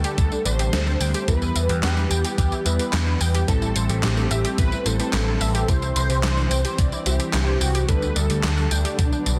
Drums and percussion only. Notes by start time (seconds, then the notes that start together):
0.04 closed hi-hat, tambourine
0.18 kick, closed hi-hat, tambourine
0.32 tambourine
0.45 closed hi-hat, tambourine
0.59 closed hi-hat, tambourine
0.73 snare, closed hi-hat, tambourine
0.87 snare, tambourine
1.01 open hi-hat, tambourine
1.14 closed hi-hat, tambourine
1.28 kick, closed hi-hat, tambourine
1.42 tambourine
1.56 closed hi-hat, tambourine
1.69 closed hi-hat, tambourine
1.83 snare, clap, closed hi-hat, tambourine
1.97 tambourine
2.11 closed hi-hat, tambourine
2.24 closed hi-hat, tambourine
2.38 kick, closed hi-hat, tambourine
2.52 tambourine
2.66 closed hi-hat, tambourine
2.79 closed hi-hat, tambourine
2.93 snare, clap, closed hi-hat, tambourine
3.21 open hi-hat, tambourine
3.35 closed hi-hat, tambourine
3.48 kick, closed hi-hat, tambourine
3.62 tambourine
3.76 closed hi-hat, tambourine
3.89 closed hi-hat, tambourine
4.03 snare, clap, closed hi-hat, tambourine
4.17 tambourine
4.31 closed hi-hat, tambourine
4.45 closed hi-hat, tambourine
4.58 kick, closed hi-hat, tambourine
4.72 tambourine
4.86 closed hi-hat, tambourine
5.00 closed hi-hat, tambourine
5.13 snare, clap, closed hi-hat, tambourine
5.41 open hi-hat, tambourine
5.55 closed hi-hat, tambourine
5.68 kick, closed hi-hat, tambourine
5.82 tambourine
5.96 closed hi-hat, tambourine
6.10 closed hi-hat, tambourine
6.24 snare, clap, closed hi-hat, tambourine
6.37 tambourine
6.51 closed hi-hat, tambourine
6.65 closed hi-hat, tambourine
6.78 kick, closed hi-hat, tambourine
6.92 tambourine
7.06 closed hi-hat, tambourine
7.20 closed hi-hat, tambourine
7.34 snare, clap, closed hi-hat, tambourine
7.61 open hi-hat, tambourine
7.75 closed hi-hat, tambourine
7.89 kick, closed hi-hat, tambourine
8.02 tambourine
8.16 closed hi-hat, tambourine
8.30 closed hi-hat, tambourine
8.44 snare, clap, closed hi-hat, tambourine
8.57 tambourine
8.71 closed hi-hat, tambourine
8.85 closed hi-hat, tambourine
8.99 kick, closed hi-hat, tambourine
9.12 tambourine
9.26 closed hi-hat, tambourine